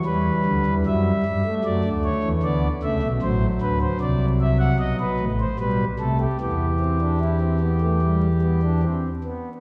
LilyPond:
<<
  \new Staff \with { instrumentName = "Pipe organ" } { \time 4/4 \key e \minor \tempo 4 = 75 b'4 e''4 d''8 cis''8 d''8 e''8 | c''8 b'16 c''16 d''8 e''16 fis''16 dis''16 b'8 c''16 b'8 a'16 g'16 | g'2.~ g'8 r8 | }
  \new Staff \with { instrumentName = "Pipe organ" } { \clef bass \time 4/4 \key e \minor << { g2 a4 b8 a8 | fis2. g8 a8 | b8 c'16 d'16 e'16 c'16 b16 a16 g8 b16 d'16 c'8 b8 | } \\ { <e, e>8 <d, d>16 <e, e>16 <fis, fis>8 <g, g>16 a16 <fis, fis>16 <d, d>8 <e, e>16 <d, d>8 <cis, cis>16 <b,, b,>16 | <a,, a,>8 <d, d>8 <c, c>4 <b,, b,>8 <a,, a,>8 <b,, b,>8 <c, c>8 | <e, e>2.~ <e, e>8 r8 | } >> }
>>